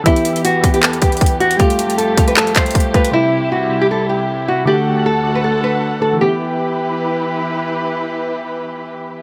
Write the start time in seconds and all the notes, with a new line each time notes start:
0.04 E2 E3 B3 E4 G4, kick, closed hi-hat
0.16 closed hi-hat
0.25 closed hi-hat
0.33 E3 B3 G4, closed hi-hat
0.45 F#4, closed hi-hat
0.61 E3 B3 G4, kick, closed hi-hat
0.74 G4, closed hi-hat
0.83 A4, clap, closed hi-hat
0.93 closed hi-hat
1.02 G4, kick, closed hi-hat
1.12 closed hi-hat
1.17 closed hi-hat
1.21 kick, closed hi-hat
1.26 closed hi-hat
1.40 F#4, closed hi-hat
1.51 closed hi-hat
1.57 F2 C3 G3 A3 F4 G4, kick, closed hi-hat
1.70 closed hi-hat
1.79 closed hi-hat
1.87 G3 A3 F4, closed hi-hat
1.98 A4, closed hi-hat
2.15 G3 A3 F4, kick, closed hi-hat
2.28 B4, closed hi-hat
2.37 A4, clap, closed hi-hat
2.47 closed hi-hat
2.56 C5, kick, clap, closed hi-hat
2.66 closed hi-hat
2.71 closed hi-hat
2.75 kick, closed hi-hat
2.80 closed hi-hat
2.93 G3 A3 F4 B4, kick, closed hi-hat
3.05 closed hi-hat
3.11 C2 C3 G3 E4
3.41 C3 G3 E4
3.52 F#4
3.69 C3 G3 E4
3.81 G4
3.91 A4
4.09 G4
4.48 F#4
4.66 D2 D3 A3 F#4 G4 A4 F#5
4.95 D3 A3 F#4
5.06 A4
5.23 D3 A3 F#4
5.35 B4
5.44 A4
5.64 B4
6.01 D3 A3 F#4 A4
6.13 E3
6.21 E3 B3 E4 G4 B4
6.29 G4